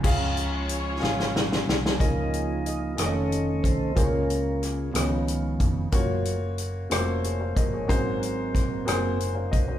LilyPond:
<<
  \new Staff \with { instrumentName = "Upright piano" } { \time 6/8 \key des \major \tempo 4. = 61 << { r2. | r2. | r2. | r2 <aes' des''>16 <c'' f''>16 <bes' ees''>16 <aes' des''>16~ |
<aes' des''>16 r2 <c'' f''>16 <bes' ees''>16 <ges' c''>16 | } \\ { <des' f' aes' f''>4 r8 <des' f' aes' f''>4 r8 | <des' f' bes' ees''>4 r8 <des' f' a' des'' ees''>4 r8 | <bes f' aes' c'' des''>4 r8 <ces' ees' f' des''>4 r8 | <bes f' ges' des''>4 r8 <a bes f' ges' c''>4 r8 |
<bes ges' aes' c''>4 r8 <bes ges' aes' c''>4 r8 | } >> }
  \new Staff \with { instrumentName = "Upright piano" } { \clef bass \time 6/8 \key des \major des4. r4. | des4. r4. | des4. des4. | r2. |
aes,4. r4. | }
  \new Staff \with { instrumentName = "String section" } { \time 6/8 \key des \major <des' f' aes' des''>2. | r2. | r2. | r2. |
r2. | }
  \new Staff \with { instrumentName = "Tonewheel organ" } { \time 6/8 \key des \major r2. | aes'4 ees''8 des''4 c''8 | bes'4 aes'8 f'4 r8 | r2. |
r2. | }
  \new Staff \with { instrumentName = "Tonewheel organ" } { \clef bass \time 6/8 \key des \major <f aes des'>2~ <f aes des'>8 <f aes des'>8 | <f bes ees' f'>4. <ees a des' a'>4. | <des aes des' f'>4. <ees f aes ces'>4. | <ges aes bes>8 r2 <f aes bes>8 |
<ges bes c'>4. <ges bes c'>8 r4 | }
  \new Staff \with { instrumentName = "Fingered electric bass" } { \clef bass \time 6/8 \key des \major des,4. aes,,4 c,8 | des,4. f,,4 c,8 | des,4. des,4 f,,8 | ges,,4. f,,4 g,,8 |
aes,,4. ges,,4 c,8 | }
  \new DrumStaff \with { instrumentName = "Drums" } \drummode { \time 6/8 <cymc bd>8 hh8 hh8 sn16 sn16 sn16 sn16 sn16 sn16 | <hh bd>8 hh8 hh8 <hh ss>8 hh8 <hh bd>8 | <hh bd>8 hh8 <hh ss>8 <hh ss>8 hh8 <hh bd>8 | <hh bd>8 hh8 hh8 <hh ss>8 hh8 <hh bd>8 |
<hh bd>8 hh8 <hh bd ss>8 <hh ss>8 hh8 <hh bd>8 | }
>>